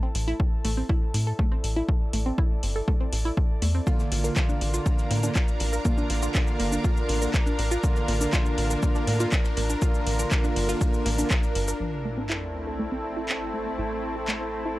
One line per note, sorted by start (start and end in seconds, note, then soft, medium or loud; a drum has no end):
0.00 0.11 C4 medium
0.00 3.87 E4 medium
0.00 3.87 A4 medium
0.00 1.10 C5 medium
0.00 3.87 A5 medium
0.15 0.34 A1 loud
0.15 open hi-hat loud
0.28 0.36 E4 loud
0.40 kick loud
0.65 0.83 A1 medium
0.65 0.70 A3 medium
0.65 open hi-hat loud
0.77 0.89 C4 medium
0.89 0.98 E4 medium
0.89 kick loud
0.95 13.16 D5 medium
1.14 1.33 A2 medium
1.14 open hi-hat loud
1.27 1.35 A4 medium
1.39 1.48 A3 medium
1.39 kick loud
1.52 1.60 C4 medium
1.64 1.82 A1 medium
1.64 open hi-hat loud
1.76 1.85 E4 medium
1.89 kick loud
2.13 2.32 A1 medium
2.13 2.19 A3 medium
2.13 open hi-hat loud
2.26 2.38 C4 medium
2.38 2.47 E4 medium
2.38 kick loud
2.63 2.82 G1 medium
2.63 open hi-hat medium
2.76 2.84 A4 medium
2.88 2.96 A3 medium
2.88 kick loud
3.00 3.09 C4 medium
3.12 3.31 A1 medium
3.12 open hi-hat loud
3.25 3.34 E4 loud
3.37 kick loud
3.62 3.81 E2 medium
3.62 3.67 A3 medium
3.62 open hi-hat loud
3.75 3.86 C4 medium
3.87 5.20 D3 loud
3.87 5.20 A#3 medium
3.87 11.76 D4 medium
3.87 11.80 F4 medium
3.87 5.20 F4 loud
3.87 3.96 F4 medium
3.87 11.76 A#4 medium
3.87 11.76 F5 medium
3.87 11.76 A#5 loud
3.87 kick loud
3.87 ride medium
3.87 shaker soft
3.99 snare soft
3.99 shaker soft
4.08 11.80 A#4 medium
4.12 4.30 A1 medium
4.12 open hi-hat loud
4.12 ride medium
4.20 11.80 A#5 medium
4.24 4.33 A#4 medium
4.24 snare medium
4.24 shaker medium
4.36 4.45 A#3 medium
4.36 kick loud
4.36 snare loud
4.36 clap loud
4.36 ride medium
4.36 shaker soft
4.49 4.57 D4 medium
4.49 shaker soft
4.61 4.80 A1 loud
4.61 open hi-hat medium
4.61 ride medium
4.74 4.82 F4 medium
4.74 ride soft
4.74 shaker medium
4.86 kick loud
4.86 ride medium
4.86 shaker medium
4.98 snare soft
4.98 shaker soft
5.11 5.29 A2 medium
5.11 5.16 A#3 medium
5.11 open hi-hat loud
5.11 ride medium
5.23 5.33 D3 medium
5.23 5.33 A#3 medium
5.23 5.35 D4 medium
5.23 5.33 F4 loud
5.23 ride soft
5.23 shaker medium
5.35 5.44 F4 medium
5.35 kick loud
5.35 snare loud
5.35 clap loud
5.35 ride medium
5.35 shaker medium
5.48 shaker soft
5.60 5.79 A1 medium
5.60 open hi-hat loud
5.60 ride medium
5.73 5.81 A#4 medium
5.73 ride soft
5.73 shaker medium
5.85 7.19 D3 loud
5.85 7.19 A#3 medium
5.85 5.94 A#3 medium
5.85 7.19 F4 loud
5.85 kick loud
5.85 ride medium
5.85 shaker medium
5.98 6.06 D4 medium
5.98 shaker soft
6.10 6.29 A1 medium
6.10 open hi-hat loud
6.10 ride medium
6.23 6.31 F4 loud
6.23 shaker medium
6.34 kick loud
6.34 snare loud
6.34 clap loud
6.34 ride medium
6.34 shaker medium
6.47 shaker soft
6.59 6.78 G1 medium
6.59 6.65 A#3 medium
6.59 snare soft
6.59 open hi-hat medium
6.59 open hi-hat loud
6.72 6.84 D4 medium
6.72 shaker medium
6.84 6.93 F4 medium
6.84 kick loud
6.84 ride medium
6.84 shaker medium
6.97 shaker soft
7.08 7.28 A1 medium
7.08 open hi-hat loud
7.08 ride medium
7.22 7.31 D3 medium
7.22 7.31 A#3 medium
7.22 7.31 F4 loud
7.22 7.30 A#4 medium
7.22 shaker medium
7.34 7.43 A#3 medium
7.34 kick loud
7.34 snare loud
7.34 clap loud
7.34 ride medium
7.34 shaker medium
7.47 7.55 D4 medium
7.47 shaker soft
7.58 7.77 A1 medium
7.58 open hi-hat loud
7.58 ride medium
7.71 7.80 F4 loud
7.71 snare soft
7.71 shaker medium
7.84 9.17 D3 medium
7.84 9.17 A#3 medium
7.84 9.17 F4 loud
7.84 kick loud
7.84 ride medium
7.84 shaker medium
7.96 snare soft
7.96 shaker soft
8.08 8.27 A1 loud
8.08 8.14 A#3 medium
8.08 open hi-hat medium
8.08 ride medium
8.21 8.32 D4 medium
8.21 snare soft
8.21 shaker medium
8.33 8.42 F4 medium
8.33 kick loud
8.33 snare loud
8.33 clap loud
8.33 ride medium
8.33 shaker medium
8.46 shaker soft
8.57 8.76 A1 loud
8.57 open hi-hat medium
8.57 ride medium
8.70 8.79 A#4 medium
8.70 ride soft
8.70 shaker medium
8.83 8.91 A#3 medium
8.83 kick loud
8.83 ride medium
8.83 shaker medium
8.95 9.04 D4 medium
8.95 snare medium
8.95 shaker soft
9.07 9.26 A2 medium
9.07 snare loud
9.07 open hi-hat loud
9.07 ride medium
9.20 9.30 D3 medium
9.20 9.30 A#3 medium
9.20 9.28 F4 loud
9.20 9.30 F4 loud
9.20 snare loud
9.20 ride medium
9.20 shaker medium
9.32 kick loud
9.32 snare loud
9.32 clap loud
9.32 ride medium
9.32 shaker medium
9.44 snare loud
9.44 ride medium
9.44 shaker soft
9.57 9.76 A1 medium
9.57 9.62 A#3 medium
9.57 open hi-hat loud
9.57 ride medium
9.70 9.81 D4 medium
9.70 ride soft
9.70 shaker medium
9.82 11.15 D3 medium
9.82 11.15 A#3 medium
9.82 11.15 F4 loud
9.82 9.91 F4 medium
9.82 kick loud
9.82 ride medium
9.82 shaker medium
9.94 shaker soft
10.07 10.25 A1 medium
10.07 open hi-hat loud
10.07 ride medium
10.19 10.28 A#4 medium
10.19 shaker medium
10.31 10.40 A#3 medium
10.31 kick loud
10.31 snare loud
10.31 clap loud
10.31 ride loud
10.31 shaker medium
10.44 10.52 D4 medium
10.44 shaker soft
10.56 10.75 G1 medium
10.56 snare medium
10.56 open hi-hat loud
10.56 open hi-hat medium
10.69 10.77 F4 medium
10.69 shaker medium
10.81 kick loud
10.81 ride medium
10.81 shaker medium
10.94 shaker soft
11.05 11.24 A1 loud
11.05 11.11 A#3 medium
11.05 snare loud
11.05 open hi-hat loud
11.05 ride medium
11.18 11.28 D3 medium
11.18 11.28 A#3 medium
11.18 11.30 D4 medium
11.18 11.28 F4 loud
11.18 shaker medium
11.30 11.39 F4 medium
11.30 kick loud
11.30 snare loud
11.30 clap loud
11.30 ride medium
11.30 shaker medium
11.43 shaker soft
11.55 11.74 G1 medium
11.55 open hi-hat loud
11.55 ride medium
11.68 11.76 A#4 medium
11.68 snare soft
11.68 shaker medium
11.80 13.76 A1 medium
11.80 14.79 A3 medium
11.80 14.79 C4 medium
11.80 14.79 E4 medium
11.80 sub drop medium
11.90 14.79 A5 medium
11.99 14.79 A4 medium
12.05 12.10 A3 medium
12.18 12.29 C4 medium
12.28 12.38 E4 medium
12.28 14.79 C5 medium
12.28 clap loud
12.67 12.76 A4 medium
12.79 12.88 A3 medium
12.92 13.00 C4 medium
13.17 13.25 E4 loud
13.29 clap loud
13.54 13.59 A3 medium
13.66 13.78 C4 medium
13.78 14.79 A1 medium
13.78 13.87 E4 medium
14.16 14.24 A4 medium
14.28 14.37 A3 medium
14.28 clap loud
14.41 14.49 C4 medium
14.66 14.74 E4 medium